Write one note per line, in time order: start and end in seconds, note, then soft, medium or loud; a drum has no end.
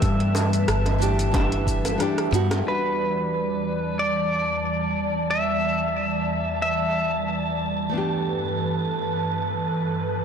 0.00 0.64 G2 loud
0.00 0.95 E3 loud
0.00 2.62 G3 medium
0.00 0.96 A3 medium
0.00 0.97 B3 medium
0.00 0.98 D4 medium
0.00 0.99 G4 loud
0.00 2.62 B4 medium
0.00 1.97 E5 loud
0.00 2.62 E5 medium
0.00 2.61 A5 loud
0.00 kick loud
0.00 closed hi-hat medium
0.00 shaker soft
0.20 closed hi-hat soft
0.35 high bongo medium
0.35 shaker medium
0.53 closed hi-hat soft
0.53 shaker soft
0.68 1.96 G1 medium
0.68 cross-stick loud
0.68 closed hi-hat medium
0.68 shaker soft
0.86 closed hi-hat soft
0.86 high bongo medium
0.98 1.29 E3 medium
0.98 1.30 A3 medium
0.98 1.31 D4 medium
0.98 shaker medium
1.03 1.31 G4 medium
1.19 closed hi-hat medium
1.19 shaker soft
1.31 1.95 E3 medium
1.31 1.96 A3 medium
1.31 1.97 D4 medium
1.31 kick loud
1.31 closed hi-hat medium
1.31 high bongo medium
1.31 shaker soft
1.36 1.97 G4 medium
1.52 closed hi-hat soft
1.67 kick medium
1.67 shaker medium
1.85 cross-stick soft
1.85 closed hi-hat soft
1.85 high bongo medium
1.85 shaker soft
1.98 2.28 E3 medium
1.98 2.29 A3 medium
1.98 2.30 D4 medium
1.98 cross-stick medium
1.98 closed hi-hat medium
1.98 shaker soft
2.02 2.30 G4 medium
2.18 cross-stick medium
2.18 closed hi-hat soft
2.31 2.61 G2 medium
2.31 2.61 G3 medium
2.31 2.62 B3 medium
2.31 2.64 E4 medium
2.31 2.68 F#4 medium
2.31 shaker medium
2.51 cross-stick medium
2.51 closed hi-hat soft
2.51 high bongo loud
2.51 shaker soft
2.62 7.89 E2 medium
2.62 10.25 E3 medium
2.62 7.88 G3 medium
2.62 7.89 G3 medium
2.62 7.90 D4 medium
2.62 7.89 D5 medium
2.62 10.25 A5 medium
2.68 7.92 F#4 medium
2.68 4.03 B4 medium
3.99 5.26 D5 medium
5.31 6.61 E5 medium
6.62 7.57 E5 medium
7.89 10.25 G2 medium
7.89 10.25 A3 medium
7.89 10.25 B3 medium
7.89 10.25 A4 medium
7.89 10.25 B4 medium
7.93 10.25 D4 medium
7.93 7.97 E4 medium
7.98 10.25 G4 medium